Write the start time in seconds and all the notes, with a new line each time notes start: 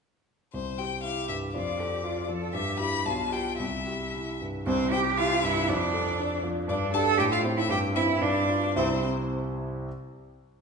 0.54 C2 C5
0.79 G4 G5
1.03 E4 G4 F5
1.29 G2 E5
1.54 F2 F4 D5
1.80 G4 A4
2.04 F4
2.29 F3 A4
2.53 G2 G4 E5
2.79 E4 G4 B5
3.05 B1 F4 A5
3.32 F4 G4 G5
3.59 C2 E4 E5
3.87 G4
4.14 E4
4.41 G2
4.66 C2 C4 C5
4.91 G4 G5
5.18 E4 F4 F5
5.43 G2 E4 E5
5.68 F2 D4 D5
5.94 A4
6.19 D4
6.43 F3
6.68 G2 D4 D5
6.93 D4 G4 A4 A5
7.18 A2 G4 G5
7.31 F4 F5
7.43 C4 E4
7.57 E4 E5
7.69 G2 G4 G5
7.95 C4 E4 E5
8.21 G2 D4 D5
8.49 D4 F4
8.76 C2 C3 C4 E4 G4 C5 E5